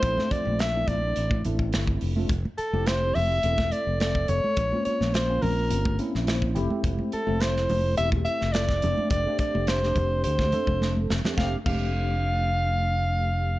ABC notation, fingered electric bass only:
X:1
M:4/4
L:1/16
Q:1/4=106
K:F
V:1 name="Fingered electric bass" clef=bass
B,,, z2 B,,,3 B,,,2 A,,,2 A,,,2 G,,,2 F,,,2 | F,,, z2 F,,,3 F,,,2 E,,,2 z F,,,3 F,,, z | B,,, z2 B,,,3 B,,,2 G,,,2 z B,,,3 F,,, z | F,,, z2 F,,,3 F,,,2 E,,,2 z F,,,3 F,,, z |
F,,, z2 F,,,3 F,,,2 D,,2 z F,,,3 F,,, z | F,,, z F,,,12- F,,,2 |]